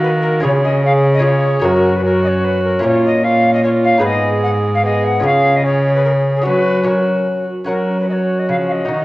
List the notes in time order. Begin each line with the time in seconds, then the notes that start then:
Already playing: D#3 A#3 D#4 F#4
0.03 B4
0.21 A#4
0.40 C#3 C#4 F4 G#4 C#5
0.64 D#5
0.83 C#4 G#4 F5
1.14 D#5
1.19 C#4 F4 G#4
1.24 G#4 C#5
1.59 F#2 C#4 F#4 A#4
1.64 F#2 F#4 A#4
1.96 B4
2.03 C#4 F#4 A#4
2.23 C#5 D#5
2.44 B4
2.64 A#4
2.79 A#2 C#4 F4 A#4
2.83 A#2 C#4 F4 C#5
3.05 D#5
3.23 C#4 F4 F5
3.53 D#5
3.63 C#4 F4 C#5
3.84 F5
3.98 G#2 D#4 G#4 B4
4.03 G#2 B3 G#4 D#5
4.43 F#5
4.74 F5
4.83 B3 G#4 D#5
5.04 F#5
5.19 C#3 C#4 F4 G#4
5.24 G#4 F5
5.56 D#5
5.63 C#4 G#4 C#5
5.95 B4
6.04 A#4
6.36 G#4
6.41 F#3 C#4 F#4 B4
6.46 F#4
6.83 C#4 F#4 A#4
7.65 F#3 C#4 F#4 A#4 F#5
7.70 A#4
8.00 B4
8.08 C#4 F#4 C#5 D#5
8.39 D#5
8.49 C#3 F3 F5
8.68 D#5 F5
8.85 D#3 D#4 F#4
8.89 D#3 D#4 F#4